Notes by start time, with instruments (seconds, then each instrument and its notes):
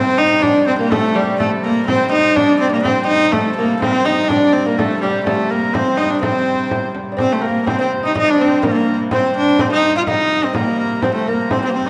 Already playing: hurdy-gurdy C3 G3, viola da gamba C4, lute C4, shawm C5
0.19 viola da gamba D#4, frame drum
0.42 lute D4, viola da gamba D4, shawm D5, frame drum
0.66 viola da gamba C4, lute C4, shawm C5
0.79 viola da gamba A#3, lute A#3
0.90 viola da gamba A3, lute A3, shawm A4, frame drum
1.15 viola da gamba G3, lute G3, shawm G4, frame drum
1.39 viola da gamba A3, lute A3, shawm A4, frame drum
1.63 viola da gamba A#3, shawm A#4
1.87 viola da gamba C4, lute C4, shawm C5, frame drum
2.12 viola da gamba D#4, lute D#4, frame drum
2.36 lute D4, viola da gamba D4, shawm D5, frame drum
2.60 viola da gamba C4, frame drum
2.72 viola da gamba A#3, shawm A#4
2.77 lute D4
2.83 viola da gamba C4, lute C4, shawm C5, frame drum
3.07 viola da gamba D#4, frame drum
3.32 hurdy-gurdy C3 G3, viola da gamba A3, lute A3, shawm A4, frame drum
3.57 viola da gamba A#3, lute A#3
3.81 viola da gamba C4, lute C4, shawm C5, frame drum
3.88 shawm A#4
3.93 shawm C5
4.05 viola da gamba D#4, shawm D#5, frame drum
4.28 viola da gamba D4, lute D4, shawm D5, frame drum
4.53 viola da gamba C4
4.66 viola da gamba A#3, lute A#3, shawm A#4
4.78 viola da gamba A3, lute A3, shawm A4, frame drum
5.01 viola da gamba G3, lute G3, shawm G4, frame drum
5.25 viola da gamba A3, lute A3, shawm A4, frame drum
5.50 lute A#3, viola da gamba A#3, shawm A#4
5.73 viola da gamba C4, lute C4, shawm C5, frame drum
5.97 lute D#4, viola da gamba D#4, frame drum
6.10 viola da gamba D4
6.21 lute C4, viola da gamba C4, shawm C5, frame drum
6.47 frame drum
6.71 frame drum
6.95 frame drum
7.12 lute D4
7.17 hurdy-gurdy C3 G3, lute C4, viola da gamba C4, shawm C5, frame drum
7.32 viola da gamba A3
7.41 lute A#3, shawm A#4
7.45 viola da gamba A#3
7.66 lute C4, viola da gamba C4, shawm C5, frame drum
7.79 lute C4, viola da gamba C4, shawm C5
8.03 lute D#4, viola da gamba D#4
8.15 lute D#4, viola da gamba D#4, shawm D#5, frame drum
8.27 viola da gamba D4, shawm D5
8.38 lute C4, viola da gamba C4, shawm C5
8.63 lute A#3, viola da gamba A#3, shawm A#4, frame drum
8.71 shawm A4
8.78 shawm A#4
9.11 lute C4, viola da gamba C4, shawm C5, frame drum
9.37 viola da gamba D4
9.59 lute C4, viola da gamba C4, shawm C5, frame drum
9.72 lute D#4, viola da gamba D#4
9.96 lute F4, viola da gamba F4, shawm F5
10.07 lute D#4, viola da gamba D#4, shawm D#5, frame drum
10.31 frame drum
10.44 lute C4, viola da gamba C4
10.55 lute A#3, viola da gamba A#3, shawm A#4, frame drum
10.80 shawm A#4
11.01 hurdy-gurdy C3 G3, viola da gamba C4, lute C4, shawm C5, frame drum
11.15 viola da gamba A3, lute A3
11.27 lute A#3, viola da gamba A#3, shawm A#4
11.51 lute C4, viola da gamba C4, shawm C5, frame drum
11.63 lute C4, viola da gamba C4
11.69 viola da gamba A#3
11.74 lute C4, viola da gamba C4
11.86 lute D#4, shawm D#5